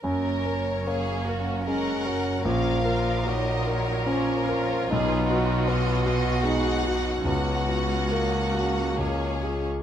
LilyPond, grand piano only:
\new Staff \with { instrumentName = "Grand piano" } { \time 3/4 \key fis \major \tempo 4 = 74 fis,8 ais'8 cis''8 ais'8 cis'8 ais'8 | ais,,8 ais'8 cis''8 ais'8 cis'8 ais'8 | b,,8 fis'8 b'8 fis'8 dis'8 fis'8 | cis,8 fis'8 ais'8 fis'8 cis,8 <eis' gis'>8 | }